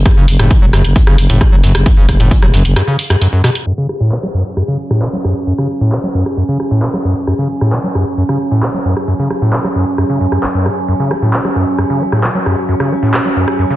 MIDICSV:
0, 0, Header, 1, 5, 480
1, 0, Start_track
1, 0, Key_signature, 3, "minor"
1, 0, Tempo, 451128
1, 61, Time_signature, 4, 2, 24, 8
1, 14644, End_track
2, 0, Start_track
2, 0, Title_t, "Synth drone"
2, 0, Program_c, 0, 95
2, 3901, Note_on_c, 0, 54, 80
2, 3901, Note_on_c, 0, 61, 77
2, 14644, Note_off_c, 0, 54, 0
2, 14644, Note_off_c, 0, 61, 0
2, 14644, End_track
3, 0, Start_track
3, 0, Title_t, "Acid bass"
3, 0, Program_c, 1, 38
3, 61, Note_on_c, 1, 42, 83
3, 127, Note_off_c, 1, 42, 0
3, 182, Note_on_c, 1, 49, 74
3, 280, Note_off_c, 1, 49, 0
3, 421, Note_on_c, 1, 45, 103
3, 541, Note_on_c, 1, 47, 99
3, 557, Note_off_c, 1, 45, 0
3, 607, Note_off_c, 1, 47, 0
3, 661, Note_on_c, 1, 54, 81
3, 701, Note_off_c, 1, 54, 0
3, 782, Note_on_c, 1, 42, 73
3, 880, Note_off_c, 1, 42, 0
3, 1021, Note_on_c, 1, 42, 82
3, 1087, Note_off_c, 1, 42, 0
3, 1142, Note_on_c, 1, 49, 77
3, 1240, Note_off_c, 1, 49, 0
3, 1381, Note_on_c, 1, 45, 106
3, 1500, Note_on_c, 1, 47, 103
3, 1516, Note_off_c, 1, 45, 0
3, 1566, Note_off_c, 1, 47, 0
3, 1621, Note_on_c, 1, 54, 72
3, 1660, Note_off_c, 1, 54, 0
3, 1740, Note_on_c, 1, 42, 76
3, 1840, Note_off_c, 1, 42, 0
3, 1980, Note_on_c, 1, 42, 82
3, 2046, Note_off_c, 1, 42, 0
3, 2100, Note_on_c, 1, 49, 74
3, 2199, Note_off_c, 1, 49, 0
3, 2340, Note_on_c, 1, 45, 107
3, 2460, Note_on_c, 1, 47, 102
3, 2476, Note_off_c, 1, 45, 0
3, 2526, Note_off_c, 1, 47, 0
3, 2580, Note_on_c, 1, 54, 82
3, 2620, Note_off_c, 1, 54, 0
3, 2699, Note_on_c, 1, 42, 76
3, 2799, Note_off_c, 1, 42, 0
3, 2939, Note_on_c, 1, 42, 82
3, 3006, Note_off_c, 1, 42, 0
3, 3060, Note_on_c, 1, 49, 75
3, 3159, Note_off_c, 1, 49, 0
3, 3300, Note_on_c, 1, 42, 99
3, 3366, Note_off_c, 1, 42, 0
3, 3420, Note_on_c, 1, 42, 101
3, 3486, Note_off_c, 1, 42, 0
3, 3540, Note_on_c, 1, 42, 72
3, 3639, Note_off_c, 1, 42, 0
3, 3660, Note_on_c, 1, 47, 104
3, 3727, Note_off_c, 1, 47, 0
3, 3900, Note_on_c, 1, 42, 77
3, 3966, Note_off_c, 1, 42, 0
3, 4020, Note_on_c, 1, 49, 73
3, 4119, Note_off_c, 1, 49, 0
3, 4261, Note_on_c, 1, 45, 103
3, 4381, Note_on_c, 1, 47, 94
3, 4397, Note_off_c, 1, 45, 0
3, 4447, Note_off_c, 1, 47, 0
3, 4501, Note_on_c, 1, 54, 80
3, 4540, Note_off_c, 1, 54, 0
3, 4620, Note_on_c, 1, 42, 75
3, 4719, Note_off_c, 1, 42, 0
3, 4860, Note_on_c, 1, 42, 80
3, 4926, Note_off_c, 1, 42, 0
3, 4980, Note_on_c, 1, 49, 72
3, 5079, Note_off_c, 1, 49, 0
3, 5220, Note_on_c, 1, 45, 101
3, 5340, Note_on_c, 1, 47, 96
3, 5356, Note_off_c, 1, 45, 0
3, 5406, Note_off_c, 1, 47, 0
3, 5460, Note_on_c, 1, 54, 70
3, 5500, Note_off_c, 1, 54, 0
3, 5581, Note_on_c, 1, 42, 74
3, 5680, Note_off_c, 1, 42, 0
3, 5821, Note_on_c, 1, 42, 81
3, 5887, Note_off_c, 1, 42, 0
3, 5941, Note_on_c, 1, 49, 72
3, 6039, Note_off_c, 1, 49, 0
3, 6181, Note_on_c, 1, 45, 106
3, 6301, Note_on_c, 1, 47, 96
3, 6317, Note_off_c, 1, 45, 0
3, 6367, Note_off_c, 1, 47, 0
3, 6421, Note_on_c, 1, 54, 80
3, 6460, Note_off_c, 1, 54, 0
3, 6541, Note_on_c, 1, 42, 76
3, 6640, Note_off_c, 1, 42, 0
3, 6780, Note_on_c, 1, 42, 77
3, 6847, Note_off_c, 1, 42, 0
3, 6901, Note_on_c, 1, 49, 72
3, 7000, Note_off_c, 1, 49, 0
3, 7141, Note_on_c, 1, 45, 98
3, 7260, Note_on_c, 1, 47, 96
3, 7276, Note_off_c, 1, 45, 0
3, 7326, Note_off_c, 1, 47, 0
3, 7380, Note_on_c, 1, 54, 75
3, 7420, Note_off_c, 1, 54, 0
3, 7499, Note_on_c, 1, 42, 77
3, 7599, Note_off_c, 1, 42, 0
3, 7739, Note_on_c, 1, 42, 80
3, 7806, Note_off_c, 1, 42, 0
3, 7860, Note_on_c, 1, 49, 70
3, 7959, Note_off_c, 1, 49, 0
3, 8100, Note_on_c, 1, 45, 99
3, 8220, Note_on_c, 1, 47, 92
3, 8236, Note_off_c, 1, 45, 0
3, 8286, Note_off_c, 1, 47, 0
3, 8340, Note_on_c, 1, 54, 79
3, 8380, Note_off_c, 1, 54, 0
3, 8460, Note_on_c, 1, 42, 75
3, 8559, Note_off_c, 1, 42, 0
3, 8700, Note_on_c, 1, 42, 81
3, 8766, Note_off_c, 1, 42, 0
3, 8820, Note_on_c, 1, 49, 73
3, 8919, Note_off_c, 1, 49, 0
3, 9060, Note_on_c, 1, 45, 105
3, 9180, Note_on_c, 1, 47, 99
3, 9196, Note_off_c, 1, 45, 0
3, 9246, Note_off_c, 1, 47, 0
3, 9301, Note_on_c, 1, 54, 70
3, 9340, Note_off_c, 1, 54, 0
3, 9420, Note_on_c, 1, 42, 76
3, 9519, Note_off_c, 1, 42, 0
3, 9660, Note_on_c, 1, 42, 79
3, 9726, Note_off_c, 1, 42, 0
3, 9782, Note_on_c, 1, 49, 74
3, 9880, Note_off_c, 1, 49, 0
3, 10021, Note_on_c, 1, 45, 104
3, 10141, Note_on_c, 1, 47, 94
3, 10157, Note_off_c, 1, 45, 0
3, 10207, Note_off_c, 1, 47, 0
3, 10262, Note_on_c, 1, 54, 77
3, 10301, Note_off_c, 1, 54, 0
3, 10381, Note_on_c, 1, 42, 73
3, 10480, Note_off_c, 1, 42, 0
3, 10621, Note_on_c, 1, 42, 80
3, 10687, Note_off_c, 1, 42, 0
3, 10742, Note_on_c, 1, 49, 74
3, 10840, Note_off_c, 1, 49, 0
3, 10861, Note_on_c, 1, 42, 75
3, 10927, Note_off_c, 1, 42, 0
3, 10982, Note_on_c, 1, 42, 77
3, 11047, Note_off_c, 1, 42, 0
3, 11101, Note_on_c, 1, 30, 79
3, 11141, Note_off_c, 1, 30, 0
3, 11221, Note_on_c, 1, 42, 70
3, 11341, Note_on_c, 1, 45, 98
3, 11357, Note_off_c, 1, 42, 0
3, 11381, Note_off_c, 1, 45, 0
3, 11580, Note_on_c, 1, 42, 81
3, 11646, Note_off_c, 1, 42, 0
3, 11701, Note_on_c, 1, 49, 69
3, 11820, Note_on_c, 1, 57, 75
3, 11836, Note_off_c, 1, 49, 0
3, 11860, Note_off_c, 1, 57, 0
3, 11941, Note_on_c, 1, 45, 107
3, 12061, Note_on_c, 1, 47, 94
3, 12077, Note_off_c, 1, 45, 0
3, 12127, Note_off_c, 1, 47, 0
3, 12181, Note_on_c, 1, 54, 77
3, 12220, Note_off_c, 1, 54, 0
3, 12299, Note_on_c, 1, 42, 72
3, 12399, Note_off_c, 1, 42, 0
3, 12540, Note_on_c, 1, 42, 78
3, 12606, Note_off_c, 1, 42, 0
3, 12661, Note_on_c, 1, 49, 73
3, 12779, Note_on_c, 1, 57, 77
3, 12795, Note_off_c, 1, 49, 0
3, 12819, Note_off_c, 1, 57, 0
3, 12900, Note_on_c, 1, 45, 101
3, 13020, Note_on_c, 1, 47, 99
3, 13036, Note_off_c, 1, 45, 0
3, 13086, Note_off_c, 1, 47, 0
3, 13139, Note_on_c, 1, 54, 73
3, 13179, Note_off_c, 1, 54, 0
3, 13260, Note_on_c, 1, 42, 75
3, 13359, Note_off_c, 1, 42, 0
3, 13499, Note_on_c, 1, 42, 85
3, 13566, Note_off_c, 1, 42, 0
3, 13620, Note_on_c, 1, 49, 69
3, 13740, Note_on_c, 1, 57, 76
3, 13755, Note_off_c, 1, 49, 0
3, 13780, Note_off_c, 1, 57, 0
3, 13860, Note_on_c, 1, 45, 105
3, 13980, Note_on_c, 1, 47, 94
3, 13996, Note_off_c, 1, 45, 0
3, 14046, Note_off_c, 1, 47, 0
3, 14101, Note_on_c, 1, 54, 79
3, 14140, Note_off_c, 1, 54, 0
3, 14220, Note_on_c, 1, 42, 78
3, 14320, Note_off_c, 1, 42, 0
3, 14460, Note_on_c, 1, 42, 82
3, 14526, Note_off_c, 1, 42, 0
3, 14580, Note_on_c, 1, 49, 73
3, 14644, Note_off_c, 1, 49, 0
3, 14644, End_track
4, 0, Start_track
4, 0, Title_t, "FM bass"
4, 0, Program_c, 2, 39
4, 180, Note_on_c, 2, 30, 87
4, 279, Note_off_c, 2, 30, 0
4, 300, Note_on_c, 2, 30, 93
4, 399, Note_off_c, 2, 30, 0
4, 420, Note_on_c, 2, 30, 90
4, 518, Note_off_c, 2, 30, 0
4, 660, Note_on_c, 2, 28, 85
4, 759, Note_off_c, 2, 28, 0
4, 780, Note_on_c, 2, 30, 105
4, 879, Note_off_c, 2, 30, 0
4, 900, Note_on_c, 2, 30, 94
4, 998, Note_off_c, 2, 30, 0
4, 1139, Note_on_c, 2, 30, 88
4, 1238, Note_off_c, 2, 30, 0
4, 1259, Note_on_c, 2, 30, 99
4, 1358, Note_off_c, 2, 30, 0
4, 1380, Note_on_c, 2, 30, 95
4, 1479, Note_off_c, 2, 30, 0
4, 1620, Note_on_c, 2, 30, 86
4, 1718, Note_off_c, 2, 30, 0
4, 1740, Note_on_c, 2, 30, 102
4, 1839, Note_off_c, 2, 30, 0
4, 1861, Note_on_c, 2, 30, 92
4, 1959, Note_off_c, 2, 30, 0
4, 2101, Note_on_c, 2, 30, 92
4, 2199, Note_off_c, 2, 30, 0
4, 2220, Note_on_c, 2, 30, 96
4, 2319, Note_off_c, 2, 30, 0
4, 2340, Note_on_c, 2, 30, 91
4, 2439, Note_off_c, 2, 30, 0
4, 2580, Note_on_c, 2, 28, 91
4, 2679, Note_off_c, 2, 28, 0
4, 2700, Note_on_c, 2, 30, 101
4, 2799, Note_off_c, 2, 30, 0
4, 2820, Note_on_c, 2, 30, 96
4, 2919, Note_off_c, 2, 30, 0
4, 14644, End_track
5, 0, Start_track
5, 0, Title_t, "Drums"
5, 59, Note_on_c, 9, 36, 116
5, 59, Note_on_c, 9, 37, 70
5, 59, Note_on_c, 9, 42, 66
5, 166, Note_off_c, 9, 36, 0
5, 166, Note_off_c, 9, 37, 0
5, 166, Note_off_c, 9, 42, 0
5, 299, Note_on_c, 9, 46, 100
5, 405, Note_off_c, 9, 46, 0
5, 420, Note_on_c, 9, 37, 65
5, 420, Note_on_c, 9, 42, 63
5, 526, Note_off_c, 9, 37, 0
5, 526, Note_off_c, 9, 42, 0
5, 539, Note_on_c, 9, 36, 119
5, 539, Note_on_c, 9, 42, 66
5, 645, Note_off_c, 9, 42, 0
5, 646, Note_off_c, 9, 36, 0
5, 779, Note_on_c, 9, 37, 71
5, 779, Note_on_c, 9, 46, 92
5, 885, Note_off_c, 9, 37, 0
5, 885, Note_off_c, 9, 46, 0
5, 899, Note_on_c, 9, 42, 63
5, 1006, Note_off_c, 9, 42, 0
5, 1019, Note_on_c, 9, 36, 107
5, 1019, Note_on_c, 9, 42, 61
5, 1125, Note_off_c, 9, 42, 0
5, 1126, Note_off_c, 9, 36, 0
5, 1140, Note_on_c, 9, 37, 72
5, 1246, Note_off_c, 9, 37, 0
5, 1259, Note_on_c, 9, 46, 102
5, 1366, Note_off_c, 9, 46, 0
5, 1380, Note_on_c, 9, 42, 63
5, 1486, Note_off_c, 9, 42, 0
5, 1499, Note_on_c, 9, 36, 116
5, 1500, Note_on_c, 9, 37, 69
5, 1500, Note_on_c, 9, 42, 66
5, 1606, Note_off_c, 9, 36, 0
5, 1607, Note_off_c, 9, 37, 0
5, 1607, Note_off_c, 9, 42, 0
5, 1740, Note_on_c, 9, 46, 86
5, 1846, Note_off_c, 9, 46, 0
5, 1861, Note_on_c, 9, 37, 71
5, 1861, Note_on_c, 9, 42, 67
5, 1967, Note_off_c, 9, 37, 0
5, 1967, Note_off_c, 9, 42, 0
5, 1979, Note_on_c, 9, 36, 116
5, 1980, Note_on_c, 9, 42, 70
5, 2086, Note_off_c, 9, 36, 0
5, 2086, Note_off_c, 9, 42, 0
5, 2220, Note_on_c, 9, 36, 62
5, 2220, Note_on_c, 9, 37, 66
5, 2220, Note_on_c, 9, 46, 100
5, 2326, Note_off_c, 9, 36, 0
5, 2327, Note_off_c, 9, 37, 0
5, 2327, Note_off_c, 9, 46, 0
5, 2340, Note_on_c, 9, 42, 66
5, 2447, Note_off_c, 9, 42, 0
5, 2460, Note_on_c, 9, 36, 115
5, 2460, Note_on_c, 9, 42, 72
5, 2566, Note_off_c, 9, 36, 0
5, 2566, Note_off_c, 9, 42, 0
5, 2580, Note_on_c, 9, 37, 65
5, 2686, Note_off_c, 9, 37, 0
5, 2700, Note_on_c, 9, 46, 94
5, 2806, Note_off_c, 9, 46, 0
5, 2820, Note_on_c, 9, 42, 65
5, 2926, Note_off_c, 9, 42, 0
5, 2940, Note_on_c, 9, 37, 64
5, 2940, Note_on_c, 9, 42, 64
5, 3047, Note_off_c, 9, 37, 0
5, 3047, Note_off_c, 9, 42, 0
5, 3181, Note_on_c, 9, 46, 104
5, 3287, Note_off_c, 9, 46, 0
5, 3301, Note_on_c, 9, 37, 67
5, 3301, Note_on_c, 9, 42, 70
5, 3407, Note_off_c, 9, 37, 0
5, 3407, Note_off_c, 9, 42, 0
5, 3421, Note_on_c, 9, 42, 70
5, 3528, Note_off_c, 9, 42, 0
5, 3660, Note_on_c, 9, 37, 66
5, 3660, Note_on_c, 9, 46, 93
5, 3767, Note_off_c, 9, 37, 0
5, 3767, Note_off_c, 9, 46, 0
5, 3781, Note_on_c, 9, 42, 70
5, 3887, Note_off_c, 9, 42, 0
5, 4141, Note_on_c, 9, 37, 62
5, 4247, Note_off_c, 9, 37, 0
5, 4381, Note_on_c, 9, 39, 122
5, 4487, Note_off_c, 9, 39, 0
5, 4501, Note_on_c, 9, 37, 63
5, 4608, Note_off_c, 9, 37, 0
5, 4861, Note_on_c, 9, 37, 61
5, 4968, Note_off_c, 9, 37, 0
5, 5221, Note_on_c, 9, 37, 60
5, 5327, Note_off_c, 9, 37, 0
5, 5341, Note_on_c, 9, 39, 124
5, 5447, Note_off_c, 9, 39, 0
5, 5581, Note_on_c, 9, 37, 61
5, 5687, Note_off_c, 9, 37, 0
5, 5942, Note_on_c, 9, 37, 62
5, 6048, Note_off_c, 9, 37, 0
5, 6301, Note_on_c, 9, 37, 60
5, 6301, Note_on_c, 9, 39, 121
5, 6408, Note_off_c, 9, 37, 0
5, 6408, Note_off_c, 9, 39, 0
5, 6661, Note_on_c, 9, 37, 57
5, 6767, Note_off_c, 9, 37, 0
5, 7021, Note_on_c, 9, 37, 59
5, 7127, Note_off_c, 9, 37, 0
5, 7260, Note_on_c, 9, 39, 116
5, 7366, Note_off_c, 9, 39, 0
5, 7380, Note_on_c, 9, 37, 61
5, 7486, Note_off_c, 9, 37, 0
5, 7739, Note_on_c, 9, 37, 62
5, 7845, Note_off_c, 9, 37, 0
5, 8100, Note_on_c, 9, 37, 61
5, 8207, Note_off_c, 9, 37, 0
5, 8220, Note_on_c, 9, 39, 113
5, 8326, Note_off_c, 9, 39, 0
5, 8460, Note_on_c, 9, 37, 64
5, 8567, Note_off_c, 9, 37, 0
5, 8820, Note_on_c, 9, 37, 64
5, 8927, Note_off_c, 9, 37, 0
5, 9180, Note_on_c, 9, 37, 63
5, 9180, Note_on_c, 9, 39, 116
5, 9286, Note_off_c, 9, 37, 0
5, 9286, Note_off_c, 9, 39, 0
5, 9540, Note_on_c, 9, 37, 63
5, 9647, Note_off_c, 9, 37, 0
5, 9900, Note_on_c, 9, 37, 65
5, 10006, Note_off_c, 9, 37, 0
5, 10140, Note_on_c, 9, 39, 114
5, 10246, Note_off_c, 9, 39, 0
5, 10260, Note_on_c, 9, 37, 65
5, 10367, Note_off_c, 9, 37, 0
5, 10620, Note_on_c, 9, 37, 63
5, 10727, Note_off_c, 9, 37, 0
5, 10981, Note_on_c, 9, 37, 65
5, 11087, Note_off_c, 9, 37, 0
5, 11100, Note_on_c, 9, 39, 108
5, 11206, Note_off_c, 9, 39, 0
5, 11340, Note_on_c, 9, 37, 64
5, 11446, Note_off_c, 9, 37, 0
5, 11820, Note_on_c, 9, 37, 68
5, 11926, Note_off_c, 9, 37, 0
5, 12059, Note_on_c, 9, 39, 113
5, 12166, Note_off_c, 9, 39, 0
5, 12179, Note_on_c, 9, 37, 67
5, 12286, Note_off_c, 9, 37, 0
5, 12539, Note_on_c, 9, 37, 64
5, 12645, Note_off_c, 9, 37, 0
5, 12900, Note_on_c, 9, 37, 69
5, 13006, Note_off_c, 9, 37, 0
5, 13019, Note_on_c, 9, 39, 113
5, 13126, Note_off_c, 9, 39, 0
5, 13259, Note_on_c, 9, 37, 67
5, 13366, Note_off_c, 9, 37, 0
5, 13620, Note_on_c, 9, 37, 63
5, 13726, Note_off_c, 9, 37, 0
5, 13981, Note_on_c, 9, 37, 71
5, 13981, Note_on_c, 9, 39, 114
5, 14087, Note_off_c, 9, 37, 0
5, 14087, Note_off_c, 9, 39, 0
5, 14340, Note_on_c, 9, 37, 66
5, 14446, Note_off_c, 9, 37, 0
5, 14644, End_track
0, 0, End_of_file